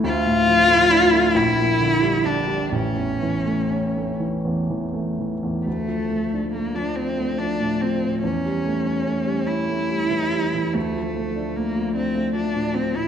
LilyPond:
<<
  \new Staff \with { instrumentName = "Cello" } { \time 6/8 \key d \minor \tempo 4. = 47 f'4. e'4 d'8 | cis'4. r4. | a4 bes16 d'16 c'8 d'8 c'8 | cis'4. e'4. |
a4 bes8 c'8 d'8 c'16 e'16 | }
  \new Staff \with { instrumentName = "Grand piano" } { \clef bass \time 6/8 \key d \minor d,16 a,16 f16 a16 d'16 a16 bes,,16 bes,16 d16 g16 d'16 g16 | a,,16 e,16 e16 a16 cis'16 a16 e16 e,16 e16 a16 e16 e,16 | d,16 f16 a16 d'16 a16 f16 d'16 a16 f16 a,16 f16 a,16 | e,16 g16 a16 cis'16 a16 g16 cis'16 a16 g16 e16 g16 e16 |
d,16 f16 a16 d'16 a16 f16 d'16 a16 f16 a,16 f16 a,16 | }
>>